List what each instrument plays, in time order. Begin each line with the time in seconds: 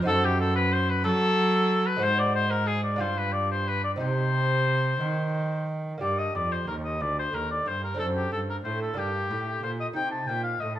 0.02 lute C4 D#4 F#4
0.07 lute F#2, cello F#2, oboe A4
0.24 oboe G4
0.41 oboe A4
0.56 oboe B4
0.72 oboe C5
0.89 oboe B4
1.04 cello F#3, lute F#3, oboe A4
1.87 oboe B4
1.96 lute G#3 C4 F#4
2.02 cello G#2, lute G#2, oboe C5
2.19 oboe D5
2.35 oboe C5
2.51 oboe A#4
2.67 oboe G#4
2.83 oboe D5
2.96 cello G2, lute D4 F4 G4
3.00 lute G2, oboe C5
3.18 oboe B4
3.32 oboe D5
3.51 oboe C5
3.68 oboe B4
3.84 oboe D5
3.96 lute C4 D#4 G4
4.00 cello C3, lute C3, oboe C5
5.01 lute D#3, cello D#3
5.98 lute A#3 D4 G4
6.02 lute G2, cello G2, oboe D5
6.18 oboe D#5
6.35 lute F2, cello F2, oboe D5
6.52 oboe C5
6.67 lute D#2, cello D#2, oboe A#4
6.84 oboe D#5
7.00 lute D2, cello D2, oboe D5
7.19 oboe C5
7.33 lute D#2, cello D#2, oboe A#4
7.51 oboe D5
7.66 lute G2, cello G2, oboe C5
7.83 oboe A#4
7.94 lute C4 D4 A4
7.99 lute F#2, cello F#2, oboe A4
8.16 oboe G4
8.32 lute G2, cello G2, oboe A4
8.50 oboe A#4
8.64 cello A2, lute A2, oboe C5
8.82 oboe A4
8.94 cello G2, lute A#3 D4 G4
8.98 lute G2, oboe G4
9.30 cello A2, lute A2
9.63 cello A#2, lute A#2, oboe C5
9.80 oboe D#5
9.93 cello C3, lute C3 D#4 G4, oboe G5
10.11 oboe A5
10.27 cello A#2, lute A#2, oboe G5
10.43 oboe F5
10.60 cello A2, lute A2, oboe D#5
10.75 oboe A5